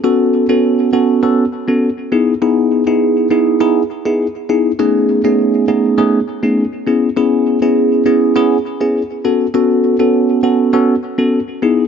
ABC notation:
X:1
M:4/4
L:1/16
Q:1/4=101
K:Alyd
V:1 name="Tine electric piano"
[B,CFA]3 [B,CFA]3 [B,CFA]2 [B,CFA] z2 [B,CFA] z2 [B,DEG] z | [B,DEG]3 [B,DEG]3 [B,DEG]2 [B,DEG] z2 [B,DEG] z2 [B,DEG] z | [A,B,CDG]3 [A,B,CDG]3 [A,B,CDG]2 [A,B,CDG] z2 [A,B,CDG] z2 [B,CEG] z | [B,CEG]3 [B,CEG]3 [B,CEG]2 [B,CEG] z2 [B,CEG] z2 [B,CFA] z |
[B,CFA]3 [B,CFA]3 [B,CFA]2 [B,CFA] z2 [B,CFA] z2 [B,DEG] z |]